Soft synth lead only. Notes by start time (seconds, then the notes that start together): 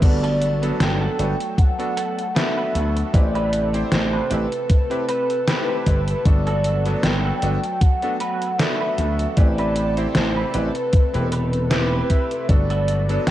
0.03 D5
0.81 G5
1.58 F#5
2.36 E5
3.15 D5
3.92 C5
4.32 B4
5.09 B4
6.25 D5
7.03 G5
7.81 F#5
8.59 E5
9.37 D5
10.15 C5
10.54 B4
11.32 B4
12.48 D5
13.27 G5